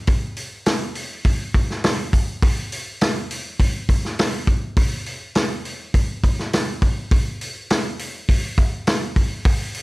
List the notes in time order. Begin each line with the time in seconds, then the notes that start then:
0.07 kick, open hi-hat
0.37 open hi-hat
0.66 snare, open hi-hat
0.95 open hi-hat
1.25 kick, open hi-hat
1.54 kick, open hi-hat
1.70 snare
1.84 snare, open hi-hat
2.13 kick, open hi-hat
2.42 kick, open hi-hat
2.72 open hi-hat
3.01 snare, open hi-hat
3.31 open hi-hat
3.60 kick, open hi-hat
3.89 kick, open hi-hat
4.05 snare
4.19 snare, open hi-hat
4.47 kick, open hi-hat
4.77 kick, open hi-hat
5.06 open hi-hat
5.35 snare, open hi-hat
5.65 open hi-hat
5.94 kick, open hi-hat
6.24 kick, open hi-hat
6.39 snare
6.53 snare, open hi-hat
6.82 kick, open hi-hat
7.11 kick, open hi-hat
7.41 open hi-hat
7.70 snare, open hi-hat
7.99 open hi-hat
8.29 kick, open hi-hat
8.58 kick, open hi-hat
8.87 snare, open hi-hat
9.16 kick, open hi-hat
9.45 kick, open hi-hat
9.74 open hi-hat